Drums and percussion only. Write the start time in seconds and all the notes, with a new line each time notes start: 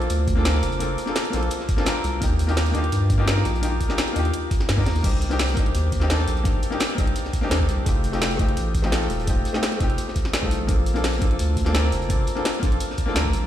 0.02 closed hi-hat
0.10 closed hi-hat
0.27 kick, closed hi-hat
0.45 snare, closed hi-hat
0.55 snare
0.63 snare, closed hi-hat
0.72 closed hi-hat
0.80 closed hi-hat
0.98 closed hi-hat
1.07 snare
1.15 snare, closed hi-hat
1.25 snare, closed hi-hat
1.33 snare, closed hi-hat
1.43 closed hi-hat
1.51 closed hi-hat
1.60 snare
1.69 kick, closed hi-hat
1.78 snare
1.86 snare, closed hi-hat
1.96 snare
2.04 closed hi-hat
2.22 kick, closed hi-hat
2.39 closed hi-hat
2.49 snare, closed hi-hat
2.57 snare, closed hi-hat, open hi-hat
2.66 snare, closed hi-hat
2.74 closed hi-hat
2.84 closed hi-hat
2.92 closed hi-hat
3.10 kick, closed hi-hat
3.28 snare, closed hi-hat
3.37 snare
3.45 snare, closed hi-hat
3.55 closed hi-hat
3.63 closed hi-hat
3.80 kick, closed hi-hat
3.90 snare
3.98 snare, closed hi-hat
4.07 snare, closed hi-hat
4.16 closed hi-hat
4.25 closed hi-hat
4.34 closed hi-hat
4.51 kick, closed hi-hat
4.60 snare
4.69 snare, closed hi-hat, open hi-hat
4.78 kick, snare
4.85 snare, closed hi-hat, open hi-hat
4.96 closed hi-hat
5.04 kick, closed hi-hat, crash
5.21 closed hi-hat
5.31 snare, closed hi-hat
5.39 snare, closed hi-hat, open hi-hat
5.48 snare, closed hi-hat
5.57 kick, closed hi-hat
5.66 closed hi-hat
5.75 closed hi-hat
5.92 kick, closed hi-hat
6.01 snare
6.10 snare, closed hi-hat
6.19 snare
6.28 closed hi-hat
6.37 closed hi-hat
6.45 kick, closed hi-hat
6.63 closed hi-hat
6.72 snare
6.80 snare, closed hi-hat
6.90 snare, closed hi-hat
6.98 kick, snare, closed hi-hat
7.07 closed hi-hat
7.16 closed hi-hat
7.25 snare
7.33 kick, closed hi-hat
7.42 snare
7.51 snare, closed hi-hat
7.60 kick, snare
7.69 closed hi-hat
7.86 kick, closed hi-hat
8.04 closed hi-hat
8.13 snare, closed hi-hat
8.22 snare, closed hi-hat, open hi-hat
8.31 snare, closed hi-hat
8.39 kick, closed hi-hat
8.49 closed hi-hat
8.57 closed hi-hat
8.75 kick, closed hi-hat
8.84 snare
8.92 snare, closed hi-hat
9.02 snare
9.10 closed hi-hat
9.19 closed hi-hat
9.27 kick, closed hi-hat
9.45 closed hi-hat
9.54 snare
9.63 snare, closed hi-hat
9.72 snare, closed hi-hat
9.80 kick, snare, closed hi-hat
9.90 closed hi-hat
9.98 closed hi-hat
10.08 snare
10.16 kick, closed hi-hat
10.25 snare
10.33 snare, closed hi-hat
10.43 kick, snare
10.51 closed hi-hat
10.68 kick, closed hi-hat
10.86 closed hi-hat
10.96 snare, closed hi-hat
11.04 snare, closed hi-hat, open hi-hat
11.13 snare, closed hi-hat
11.22 kick, closed hi-hat
11.31 closed hi-hat
11.39 closed hi-hat
11.57 kick, closed hi-hat
11.66 snare
11.75 snare, closed hi-hat
11.84 snare
11.92 closed hi-hat
12.02 closed hi-hat
12.10 kick, closed hi-hat
12.27 closed hi-hat
12.37 snare
12.45 snare, closed hi-hat
12.54 snare, closed hi-hat
12.63 kick, snare, closed hi-hat
12.72 closed hi-hat
12.80 closed hi-hat
12.90 snare
12.98 kick, closed hi-hat
13.08 snare
13.16 snare, closed hi-hat
13.25 kick, snare
13.33 closed hi-hat